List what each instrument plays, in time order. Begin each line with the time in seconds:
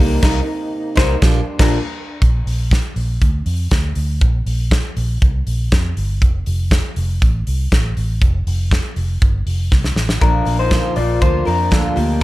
Already playing: french horn section C3 A#3 D#4, steel-string acoustic guitar D#4, clean electric guitar G4
0.00 fingered electric bass C2, steel-string acoustic guitar G3 A#3, clean electric guitar A#3
0.22 steel-string acoustic guitar C3 G3 A#3 D#4, clean electric guitar D#4 A#4, kick, snare, crash
0.96 fingered electric bass C2, steel-string acoustic guitar G3 A#3 D#4, clean electric guitar D#4 C5, kick, snare
1.22 fingered electric bass A#1, steel-string acoustic guitar F3 A#3 D4 G4, french horn section G3 D4, kick, snare
1.59 fingered electric bass A#1, steel-string acoustic guitar F3 A#3 D4 G4, clean electric guitar D4 A#4, kick, snare, crash
2.22 fingered electric bass A#1, kick, closed hi-hat
2.46 fingered electric bass A#1, open hi-hat
2.71 kick, snare, closed hi-hat
2.96 fingered electric bass A#1, open hi-hat
3.22 fingered electric bass D2, kick, closed hi-hat
3.46 fingered electric bass F2, open hi-hat
3.71 fingered electric bass D2, kick, snare, closed hi-hat
3.95 fingered electric bass D2, open hi-hat
4.21 fingered electric bass A#1, kick, closed hi-hat
4.46 fingered electric bass A#1, open hi-hat
4.71 kick, snare, closed hi-hat
4.97 fingered electric bass A#1, open hi-hat
5.22 fingered electric bass C2, kick, closed hi-hat
5.47 fingered electric bass A#1, open hi-hat
5.72 fingered electric bass F2, kick, snare, closed hi-hat
5.97 fingered electric bass G1, open hi-hat
6.22 fingered electric bass F1, kick, closed hi-hat
6.46 fingered electric bass F1, open hi-hat
6.71 kick, snare, closed hi-hat
6.96 fingered electric bass F1, open hi-hat
7.22 fingered electric bass A1, kick, closed hi-hat
7.47 fingered electric bass C2, open hi-hat
7.72 fingered electric bass A1, kick, snare, closed hi-hat
7.97 fingered electric bass A1, open hi-hat
8.21 fingered electric bass F1, kick, closed hi-hat
8.47 fingered electric bass F1, open hi-hat
8.71 kick, snare, closed hi-hat
8.96 fingered electric bass F1, open hi-hat
9.22 fingered electric bass G1, kick, closed hi-hat
9.46 fingered electric bass F1, open hi-hat
9.72 fingered electric bass C2, kick, snare
9.84 snare
9.96 fingered electric bass A1, snare
10.09 snare
10.21 fingered electric bass A#1, steel-string acoustic guitar A#2 D3 F3 A#3 F4, clean electric guitar D4 A#4, kick, closed hi-hat
10.45 fingered electric bass A#1, steel-string acoustic guitar F3 A#3 F4, open hi-hat
10.59 clean electric guitar D#4 C5
10.71 steel-string acoustic guitar A#2 D3 F3 A#3 F4, kick, snare, closed hi-hat
10.96 fingered electric bass A#1, steel-string acoustic guitar F3 A#3 F4, clean electric guitar F4 D5, open hi-hat
11.21 fingered electric bass D2, steel-string acoustic guitar D3 F3 A#3 F4, clean electric guitar F4 C5, kick, closed hi-hat
11.45 fingered electric bass F2, steel-string acoustic guitar F3 A#3 F4, clean electric guitar D4 A#4, open hi-hat
11.71 fingered electric bass D2, steel-string acoustic guitar A#2 D3 F3 A#3 F4, clean electric guitar D4 A4, kick, snare, closed hi-hat
11.96 fingered electric bass D2, steel-string acoustic guitar F3 A#3 F4, clean electric guitar A#3 G4, open hi-hat